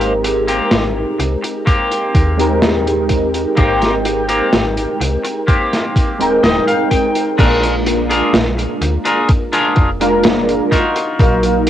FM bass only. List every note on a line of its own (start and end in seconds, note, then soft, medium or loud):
0.00 0.60 G#1 loud
0.72 1.05 G#1 medium
1.19 1.36 C2 medium
2.15 3.46 D#2 medium
3.58 4.41 G#1 loud
4.53 4.86 G#1 medium
5.00 5.17 C2 medium
6.20 6.39 D#1 soft
6.43 6.60 D#1 medium
7.39 8.22 A#1 loud
8.33 8.67 A#1 loud
8.81 8.98 D2 medium
9.77 10.60 F1 medium
11.19 11.70 A#1 loud